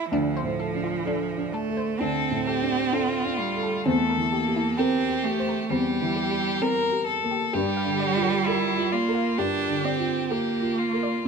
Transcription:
Already playing: felt piano E3, cello E4
0.11 felt piano D2, cello F3, synth pluck D4
0.37 synth pluck C5
0.43 felt piano A2
0.60 synth pluck A4
0.74 felt piano D4
0.84 synth pluck F4
1.05 synth pluck D4, felt piano A4
1.37 felt piano D4
1.53 cello A3, synth pluck A4
1.69 felt piano A4
1.77 synth pluck C5
1.99 felt piano D2, cello C4, synth pluck D4, violin A4
2.31 felt piano A2
2.47 violin G4, synth pluck A4
2.62 felt piano D4
2.93 synth pluck D4, violin F4, felt piano A4
3.24 felt piano D4
3.39 cello G3
3.55 felt piano A4
3.63 synth pluck A4
3.85 felt piano E2, cello A3, synth pluck C4, violin A4
4.10 synth pluck A#4
4.17 felt piano E3
4.32 cello A#3, synth pluck G4
4.48 felt piano G4
4.56 synth pluck E4
4.77 cello C4, synth pluck C4, violin G4, felt piano A#4
5.08 felt piano G4
5.24 cello A3, synth pluck G4
5.39 felt piano C5
5.49 synth pluck A#4
5.69 felt piano E2, cello G3, synth pluck C4, violin G4
6.01 felt piano E3
6.16 synth pluck G4
6.31 felt piano G4
6.62 synth pluck C4, felt piano A#4, violin A#4
6.92 felt piano G4
7.06 violin A4
7.23 felt piano A#3
7.31 synth pluck G4
7.53 felt piano G2, cello G3, synth pluck G4, violin G4
7.77 synth pluck F5
7.85 felt piano D3
8.00 synth pluck D5
8.17 felt piano F4
8.23 synth pluck A#4
8.46 violin E4, synth pluck G4, felt piano A#4
8.78 felt piano F4
8.92 cello A#3, violin F4, synth pluck D5
9.09 felt piano A#4
9.15 synth pluck F5
9.38 felt piano G2, cello D4, violin G4, synth pluck G4
9.69 felt piano D3
9.84 cello C4, synth pluck D5
9.99 felt piano F4
10.29 cello A#3, violin G4, synth pluck G4, felt piano A#4
10.62 felt piano F4
10.78 violin F4
10.93 felt piano A#4
11.03 synth pluck D5

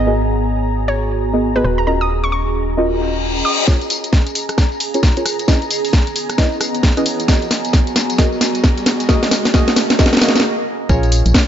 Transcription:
Already playing: fm bass G#1, ambient pad B3 G#4 C#5 G#5 A#5
0.07 synth stab B3 F#4 G#4 A#4 D#5
0.24 ambient pad F#4
0.45 ambient pad D#5
0.88 synth pluck C#5
1.33 synth stab B3 F#4 G#4 A#4 D#5
1.56 synth stab B3 F#4 G#4 A#4 D#5, synth pluck B4
1.64 fm bass D#1, ambient pad C#4, synth pluck B4
1.78 synth pluck A#5
1.87 synth stab C#4 F4 F#4 A#4 D#5, synth pluck A#5
2.01 synth pluck D#6
2.14 ambient pad A#5
2.24 synth pluck C#6
2.32 synth pluck C#6
2.77 synth stab C#4 F4 F#4 A#4 D#5, reverse cymbal
3.45 synth pluck D#6
3.67 synth stab C#4 F4 G#4 A#4 C#5, ambient pad G#4 A#5, kick, snare, tambourine, riser
3.81 closed hi-hat, tambourine
3.90 open hi-hat, tambourine
4.04 closed hi-hat, tambourine
4.13 ambient pad G#4, kick, snare, tambourine
4.27 closed hi-hat, tambourine
4.35 open hi-hat, tambourine
4.49 cross-stick, closed hi-hat, tambourine
4.58 kick, cross-stick, snare, tambourine
4.72 tambourine
4.80 open hi-hat, tambourine
4.94 synth stab C#4 F4 G#4 A#4 C#5, closed hi-hat, tambourine
5.03 kick, snare, tambourine
5.17 synth stab C#4 F4 G#4 A#4 C#5, closed hi-hat, tambourine
5.26 cross-stick, open hi-hat, tambourine
5.39 closed hi-hat, tambourine
5.48 ambient pad B3, synth stab C#4 E4 G#4 B4 D#5, kick, snare, tambourine
5.62 closed hi-hat, tambourine
5.71 open hi-hat, tambourine
5.85 open hi-hat, tambourine
5.93 kick, snare, tambourine
5.98 ambient pad C#5
6.07 closed hi-hat, tambourine
6.16 open hi-hat, tambourine
6.21 ambient pad G#5
6.30 cross-stick, closed hi-hat, tambourine
6.38 synth stab C#4 E4 G#4 B4 D#5, kick, snare, tambourine
6.52 tambourine
6.61 cross-stick, open hi-hat, tambourine
6.75 closed hi-hat, tambourine
6.83 kick, snare, tambourine
6.97 synth stab C#4 E4 G#4 B4 D#5, cross-stick, closed hi-hat, tambourine
7.06 open hi-hat, tambourine
7.20 closed hi-hat, tambourine
7.28 synth stab B3 F#4 G#4 A#4 D#5, kick, snare, tambourine
7.35 ambient pad F#4
7.42 closed hi-hat, tambourine
7.51 snare, open hi-hat, tambourine
7.65 ambient pad D#5, closed hi-hat, tambourine
7.73 kick, snare, tambourine
7.87 closed hi-hat, tambourine
7.96 snare, open hi-hat, tambourine
8.10 closed hi-hat, tambourine
8.18 synth stab B3 F#4 G#4 A#4 D#5, kick, snare, tambourine
8.32 tambourine
8.41 snare, open hi-hat, tambourine
8.55 closed hi-hat, tambourine
8.64 kick, snare, tambourine
8.78 closed hi-hat, tambourine
8.86 ambient pad C#4, snare, open hi-hat, tambourine
9.00 closed hi-hat, tambourine
9.09 synth stab A#3 F#4 G#4 A#4 D#5, kick, snare, tambourine
9.23 snare, closed hi-hat, tambourine
9.31 snare, open hi-hat, tambourine
9.45 snare, open hi-hat, tambourine
9.54 synth stab A#3 F#4 G#4 A#4 D#5, kick, snare, tambourine
9.68 snare, closed hi-hat, tambourine
9.76 snare, open hi-hat, tambourine
9.90 snare, closed hi-hat, tambourine
9.99 synth stab A#3 F#4 G#4 A#4 D#5, kick, snare, tambourine
10.06 snare
10.13 snare, tambourine
10.17 snare
10.21 synth stab A#3 F#4 G#4 A#4 D#5, snare, open hi-hat, tambourine
10.29 snare
10.36 snare, closed hi-hat, tambourine
10.40 snare
10.89 fm bass A#1, synth stab C#4 F4 G#4 A#4 C#5, ambient pad C#5 C#6, kick, tambourine
11.03 closed hi-hat, tambourine
11.12 open hi-hat, tambourine
11.26 fm bass A#1, closed hi-hat, tambourine
11.34 kick, snare, tambourine

